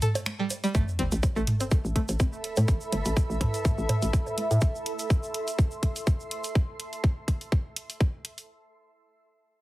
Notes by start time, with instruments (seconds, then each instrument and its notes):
0.02 synth pluck A4, closed hi-hat, mid tom, shaker
0.15 closed hi-hat, high bongo, shaker
0.26 finger snap, closed hi-hat, high conga, shaker
0.39 synth pluck G3
0.50 closed hi-hat, high bongo, shaker
0.64 synth pluck G3, closed hi-hat, high conga, shaker
0.75 fm bass A1, synth pluck A3, ambient pad A4, kick, closed hi-hat, high bongo, sub drop, high conga, shaker
0.88 shaker
0.99 fm bass G1, synth pluck C4, closed hi-hat
1.07 ambient pad E5
1.12 fm bass A1, closed hi-hat, high conga, shaker
1.23 kick, closed hi-hat, high bongo, shaker
1.36 fm bass A1, synth pluck A3, shaker
1.47 closed hi-hat, mid tom, high conga
1.55 ambient pad B5
1.60 synth pluck C4, closed hi-hat, high bongo, shaker
1.71 kick, closed hi-hat, shaker
1.85 fm bass A1, high conga, shaker
1.96 synth pluck A3, kick, closed hi-hat
2.09 fm bass A1, closed hi-hat, high bongo, shaker
2.20 synth pluck C4, kick, closed hi-hat, high conga, shaker
2.33 shaker
2.44 closed hi-hat
2.57 fm bass A2, synth pluck A3, closed hi-hat, high bongo, high conga, shaker
2.68 fm bass A1, kick, closed hi-hat, shaker
2.81 shaker
2.92 fm bass G1, closed hi-hat, high bongo, high conga
3.05 fm bass A1, closed hi-hat, shaker
3.17 kick, closed hi-hat, shaker
3.30 fm bass A1, high conga, shaker
3.41 kick, closed hi-hat, mid tom, high bongo
3.54 closed hi-hat, shaker
3.65 kick, closed hi-hat, mid tom, high conga, shaker
3.78 fm bass A1, shaker
3.89 closed hi-hat, mid tom, high bongo
4.02 fm bass A1, closed hi-hat, high conga, shaker
4.13 kick, closed hi-hat, shaker
4.27 high bongo, shaker
4.38 closed hi-hat, high conga
4.51 fm bass A2, closed hi-hat, shaker
4.61 ambient pad C6, kick, closed hi-hat, shaker
4.75 shaker
4.86 closed hi-hat
4.99 closed hi-hat, shaker
5.10 kick, closed hi-hat, shaker
5.23 shaker
5.34 closed hi-hat
5.48 closed hi-hat, shaker
5.59 kick, closed hi-hat, shaker
5.71 shaker
5.83 kick, closed hi-hat
5.96 closed hi-hat, shaker
6.07 kick, closed hi-hat, shaker
6.20 shaker
6.31 closed hi-hat
6.44 closed hi-hat, shaker
6.55 kick, closed hi-hat
6.80 closed hi-hat
6.93 closed hi-hat
7.04 kick, closed hi-hat
7.28 kick, closed hi-hat
7.41 closed hi-hat
7.52 kick, closed hi-hat
7.76 closed hi-hat
7.90 closed hi-hat
8.01 kick, closed hi-hat
8.25 closed hi-hat
8.38 closed hi-hat